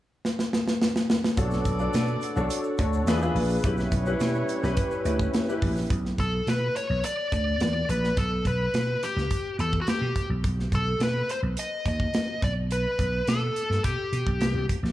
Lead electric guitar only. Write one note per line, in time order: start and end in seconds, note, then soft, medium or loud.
6.20 6.49 A4 medium
6.49 6.76 B4 medium
6.77 7.05 C#5 medium
7.05 7.32 D5 loud
7.34 7.59 D5 medium
7.62 7.90 D5 loud
7.90 8.19 B4 medium
8.18 8.44 A4 medium
8.47 9.05 B4 medium
9.04 9.56 G4 medium
9.61 9.80 A4 medium
9.81 9.88 F#4 soft
9.89 10.28 G4 medium
10.75 11.00 A4 medium
11.03 11.31 B4 medium
11.31 11.39 C5 medium
11.59 11.85 D#5 medium
11.88 12.40 D#5 medium
12.44 12.51 D5 medium
12.72 13.30 B4 medium
13.29 13.84 A4 medium
13.85 14.65 G4 medium